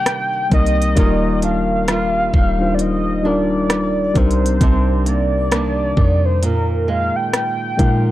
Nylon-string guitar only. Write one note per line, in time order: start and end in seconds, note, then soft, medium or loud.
0.00 0.97 C3 medium
0.00 0.52 D#3 medium
0.00 1.08 A#3 medium
0.52 0.97 D#3 medium
0.97 4.15 D#3 medium
0.97 1.88 F4 medium
1.43 3.25 D4 medium
1.88 2.33 G3 medium
1.88 4.27 F4 medium
2.34 5.51 G3 medium
3.25 4.62 D4 medium
4.16 4.60 C3 medium
4.61 6.42 C3 medium
4.61 5.52 D4 medium
5.06 5.52 A#3 medium
5.52 5.97 D#3 medium
5.52 6.88 A#3 medium
5.52 6.54 D4 medium
5.97 7.79 D#3 medium
6.43 8.11 A#2 medium
6.88 8.11 G#3 medium
7.79 8.11 F3 medium